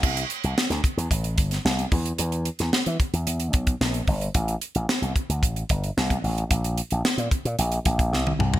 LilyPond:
<<
  \new Staff \with { instrumentName = "Slap bass" } { \clef bass \time 4/4 \key c \mixolydian \tempo 4 = 111 c,8 r16 c,16 r16 d,16 r16 e,16 a,,8 g,,8 c,8 e,8 | e,8. e,16 r16 e16 r16 e,16 e,8 b,,8 bes,,8 g,,8 | a,,8 r16 a,,16 r16 c,16 r16 d,16 a,,8 g,,8 c,8 a,,8 | bes,,8. bes,,16 r16 bes,16 r16 bes,16 bes,,8 bes,,8 c,8 c,8 | }
  \new DrumStaff \with { instrumentName = "Drums" } \drummode { \time 4/4 <cymc bd>16 hh16 hh16 hh16 sn16 <hh sn>16 <hh bd>16 hh16 <hh bd>16 hh16 <hh bd>16 <hh sn>16 sn16 hh16 <hho bd>16 hh16 | hh16 hh16 hh16 <hh sn>16 sn16 hh16 <hh bd>16 hh16 hh16 hh16 <hh bd>16 <hh bd>16 sn16 hh16 <hho bd>16 hh16 | <hh bd>16 hh16 hh16 hh16 sn16 hh16 <hh bd>16 hh16 <hh bd>16 hh16 <hh bd>16 hh16 sn16 <hh bd>16 hho16 hh16 | <hh bd>16 hh16 hh16 hh16 sn16 hh16 <hh bd>16 hh16 hh16 hh16 <hh bd>16 <hh bd>16 sn16 tommh16 toml16 tomfh16 | }
>>